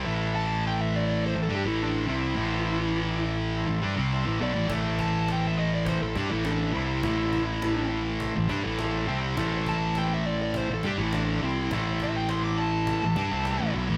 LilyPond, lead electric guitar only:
\new Staff \with { instrumentName = "Lead electric guitar" } { \time 4/4 \key a \minor \tempo 4 = 103 r8 a''8 g''16 e''16 d''16 d''16 c''16 a'16 g'16 e'16 d'8 e'8~ | e'4. r2 d''8 | r8 a''8 g''16 e''16 dis''16 d''16 c''16 a'16 g'16 e'16 d'8 e'8~ | e'4. r2 r8 |
r8 a''8 g''16 e''16 d''16 d''16 c''16 a'16 g'16 e'16 d'8 e'8 | r8 e''16 g''16 c'''16 d'''16 a''2 r8 | }